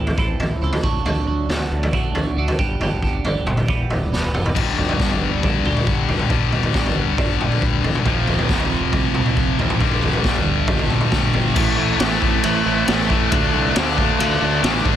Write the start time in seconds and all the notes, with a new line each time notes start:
Already playing: A1 E3 C4 E4 A4
0.07 floor tom
0.18 A1 A2 E3 C4 E4 A4, kick
0.39 A1 C4 E4 A4, floor tom
0.61 C#2 E3 C4 E4 A4
0.73 floor tom
0.83 D2 D3 F#3 A3 D4 F#4, kick
1.05 D2 D3 F#3 A3 D4 F#4, floor tom
1.27 D2 A3 D4 F#4
1.49 D2 F#3 A3 D4 F#4, snare, floor tom
1.71 D2
1.83 floor tom
1.93 D2 D3 F#3 A3 D4 F#4, kick
2.14 D2 A3 D4 F#4, floor tom
2.37 D2 F#3 A3 D4 F#4
2.48 floor tom
2.59 G1 G2 D3 G3 B3 D4 G4, kick
2.80 G1 G2 D3 G3 B3 D4 G4, floor tom
3.02 G1 G3 B3 D4 G4, kick
3.25 G1 G3 B3 D4 G4, floor tom
3.45 G1, mid tom
3.57 floor tom
3.68 E1 E2 B2 E3 G3 B3 G4, kick
3.89 E1 E3 G3 B3 G4, floor tom
4.12 E1 E3 G3 B3 G4, snare
4.33 E1 E3 G3 B3 G4, mid tom
4.46 floor tom
4.55 G1 G2 D3 G3, kick, floor tom, crash
4.77 G1 D3, floor tom
4.89 floor tom
4.99 G1 G3, kick, snare
5.10 floor tom
5.21 G1 B3
5.43 D2 D4, kick, floor tom
5.64 D2 G4, mid tom
5.77 floor tom
5.87 G1 B3, kick
6.09 G1 G3, floor tom
6.19 mid tom
6.29 G1 G2 D3 G3, kick, floor tom
6.52 G1 D3, floor tom
6.63 floor tom
6.74 G1 G3, kick, snare
6.86 floor tom
6.95 G1 B3
7.18 G1 D4, kick, floor tom
7.40 G4, mid tom
7.52 floor tom
7.62 D2 B3, kick
7.83 E1 G3, floor tom
7.95 mid tom
8.04 F1 F2 C3 F3, kick, floor tom
8.27 F1, floor tom
8.39 floor tom
8.49 F1, kick, snare
8.60 floor tom
8.70 F1
8.93 C2, kick, floor tom
9.14 C2, mid tom
9.26 floor tom
9.37 F1, kick
9.58 A1 F2 C3 F3, floor tom
9.70 mid tom
9.79 G1 G2 D3 G3, kick, floor tom
9.91 floor tom
10.01 G1, floor tom
10.13 floor tom
10.24 G1, kick, snare
10.36 floor tom
10.45 G1
10.67 G1, kick, floor tom
10.79 floor tom
10.90 mid tom
11.01 floor tom
11.12 D2, kick, snare, mid tom
11.33 G1 G2 D3 G3, floor tom
11.55 A1 A2 E3 A3 C4 E4 B4 E5, kick, crash
11.76 A1 A2 E3 A3
11.97 A1 A2 E3 A3, snare, ride bell
12.21 A1 A2 E3 A3, kick
12.43 A1 A2 E3 A3, ride bell
12.65 A1 A2 E3 A3
12.86 A1 A2 E3 A3, snare, ride bell
13.08 A2 E3 A3, kick
13.31 D2 D3 A3 D4 F4 D5 F5, kick, ride bell
13.53 C2 D3 A3 D4
13.75 D2 D3 A3 D4, snare, ride bell
13.97 D3 A3 D4, kick
14.19 D2 D3 A3 D4, ride bell
14.40 D2 D3 A3 D4
14.63 A1 D3 A3 D4, snare, ride bell
14.85 G#1 D3 A3 D4, kick